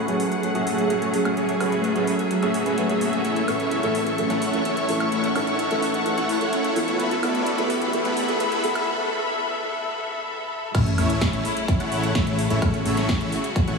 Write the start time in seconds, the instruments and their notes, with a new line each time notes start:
Already playing: string section G#4 F#5, riser
0.07 analog synth bass F#1, felt piano F#3 A3 C#4 G#4, supersaw synth A3 C#4 F#4 G#4 B4, closed hi-hat
0.20 open hi-hat
0.32 closed hi-hat
0.43 felt piano F#3 A3 C#4 G#4, closed hi-hat
0.55 analog synth bass F#1, supersaw synth A3 C#4 F#4 G#4 E5, closed hi-hat
0.67 open hi-hat
0.78 felt piano F#3 A3 C#4 G#4, closed hi-hat
0.90 analog synth bass F#1, supersaw synth A3 C#4 F#4 G#4 C#5, closed hi-hat
1.02 closed hi-hat
1.13 felt piano F#3 A3 C#4 G#4, open hi-hat
1.25 analog synth bass F#1, supersaw synth A3 C#4 F#4 G#4 C#5, closed hi-hat, high woodblock
1.37 analog synth bass F#1, supersaw synth A3 C#4 F#4 G#4 C#5, string section E5, closed hi-hat
1.49 closed hi-hat
1.60 analog synth bass F#1, felt piano F#3 A3 C#4 G#4, supersaw synth A3 C#4 F#4 G#4 B4, open hi-hat, high woodblock
1.72 closed hi-hat
1.84 closed hi-hat
1.95 analog synth bass F#1, felt piano F#3 A3 C#4 G#4, supersaw synth A3 C#4 F#4 G#4 B4, closed hi-hat
2.07 open hi-hat
2.19 closed hi-hat
2.30 felt piano F#3 A3 C#4 G#4, closed hi-hat
2.43 analog synth bass F#1, supersaw synth A3 C#4 F#4 G#4 E5, closed hi-hat
2.54 open hi-hat
2.66 analog synth bass F#1, supersaw synth A3 C#4 F#4 G#4 B4, closed hi-hat
2.77 analog synth bass F#1, felt piano F#3 A3 C#4 B4, supersaw synth A3 C#4 F#4 G#4 E5, closed hi-hat
2.89 felt piano F#3 A3 C#4 F#4, closed hi-hat
3.01 open hi-hat
3.13 analog synth bass F#1, supersaw synth A3 C#4 F#4 G#4 E5, closed hi-hat
3.25 analog synth bass A1, supersaw synth A3 C#4 E4 C#5 E5, string section A4 C#6, closed hi-hat
3.36 closed hi-hat
3.47 analog synth bass A1, felt piano A2 E3 A3 C#4 A4, supersaw synth A3 C#4 E4 C#5 E5, open hi-hat, high woodblock
3.60 closed hi-hat
3.71 closed hi-hat
3.83 analog synth bass A1, felt piano A2 E3 A3 C#4 A4, supersaw synth A3 C#4 E4 C#5 E5, closed hi-hat
3.95 open hi-hat
4.07 closed hi-hat
4.18 felt piano A2 E3 A3 C#4 A4, closed hi-hat
4.30 analog synth bass A1, supersaw synth A3 C#4 E4 C#5 F#5, closed hi-hat
4.42 open hi-hat
4.53 felt piano A2 E3 A3 C#4 A4, closed hi-hat
4.65 analog synth bass A1, supersaw synth A3 C#4 E4 C#5 E5, closed hi-hat
4.77 closed hi-hat
4.88 felt piano A2 E3 A3 C#4 A4, open hi-hat
5.00 analog synth bass A1, supersaw synth A3 C#4 E4 C#5 E5, closed hi-hat, high woodblock
5.12 analog synth bass A1, supersaw synth A3 C#4 E4 C#5 E5, string section F#5, closed hi-hat
5.24 closed hi-hat
5.35 analog synth bass A1, felt piano A2 E3 A3 C#4 A4, supersaw synth A3 C#4 E4 C#5 E5, open hi-hat, high woodblock
5.47 closed hi-hat
5.59 closed hi-hat
5.70 analog synth bass A1, felt piano A2 E3 A3 C#4 A4, supersaw synth A3 C#4 E4 C#5 E5, closed hi-hat
5.82 open hi-hat
5.94 closed hi-hat
6.05 felt piano A2 E3 A3 C#4 A4, closed hi-hat
6.17 analog synth bass A1, supersaw synth A3 C#4 E4 C#5 F#5, closed hi-hat
6.29 open hi-hat
6.40 felt piano A2 E3 A3 C#4 A4, closed hi-hat
6.53 analog synth bass A2, supersaw synth A3 C#4 E4 C#5 E5, closed hi-hat
6.64 closed hi-hat
6.75 felt piano E3 A3 B3 A4, open hi-hat
6.88 analog synth bass A2, supersaw synth A3 C#4 E4 C#5 E5, closed hi-hat
7.00 analog synth bass E1, supersaw synth A3 B3 E4 B4 E5, string section E5 B5, closed hi-hat
7.11 closed hi-hat
7.22 analog synth bass E1, felt piano E3 A3 B3 A4, supersaw synth A3 B3 E4 B4 D5, open hi-hat, high woodblock
7.35 closed hi-hat
7.46 closed hi-hat
7.58 analog synth bass E1, felt piano E3 A3 B3 A4, supersaw synth A3 B3 E4 B4 D5, closed hi-hat
7.70 open hi-hat
7.82 closed hi-hat
7.93 felt piano E3 A3 B3 A4, closed hi-hat
8.05 analog synth bass E1, supersaw synth A3 B3 E4 B4 F#5, closed hi-hat
8.17 open hi-hat
8.28 felt piano E3 A3 B3 A4, closed hi-hat
8.40 analog synth bass E1, supersaw synth A3 B3 E4 B4 E5, closed hi-hat
8.52 closed hi-hat
8.63 felt piano E3 A3 B3 A4, open hi-hat
8.75 analog synth bass E1, supersaw synth A3 B3 E4 B4 E5, closed hi-hat, high woodblock
10.75 analog synth bass A1, string section C#3 A3 E4, supersaw synth A3 C#4 E4 C#5 E5, kick, closed hi-hat, crash, sub drop, high woodblock
10.86 closed hi-hat
10.98 analog synth bass A1, supersaw synth A3 C#4 E4 C#5 E5, open hi-hat, high woodblock
11.10 closed hi-hat
11.21 kick, snare, closed hi-hat
11.33 analog synth bass A1, supersaw synth A3 C#4 E4 C#5 E5, closed hi-hat
11.45 open hi-hat
11.57 closed hi-hat
11.68 kick, closed hi-hat
11.80 analog synth bass A1, supersaw synth A3 C#4 E4 C#5 F#5, closed hi-hat
11.92 open hi-hat
12.04 closed hi-hat
12.15 analog synth bass A1, supersaw synth A3 C#4 E4 C#5 E5, kick, snare, closed hi-hat
12.27 closed hi-hat
12.39 open hi-hat
12.50 analog synth bass A1, supersaw synth A3 C#4 E4 C#5 E5, closed hi-hat
12.62 analog synth bass A1, supersaw synth A3 C#4 E4 C#5 E5, string section F#4, kick, closed hi-hat, high woodblock
12.74 closed hi-hat
12.86 analog synth bass A1, supersaw synth A3 C#4 E4 C#5 E5, open hi-hat
12.97 snare, closed hi-hat
13.09 kick, snare, closed hi-hat
13.21 analog synth bass A1, supersaw synth A3 C#4 E4 C#5 E5, closed hi-hat
13.32 open hi-hat
13.44 closed hi-hat
13.56 kick, closed hi-hat
13.68 analog synth bass A1, supersaw synth A3 C#4 E4 C#5 F#5, closed hi-hat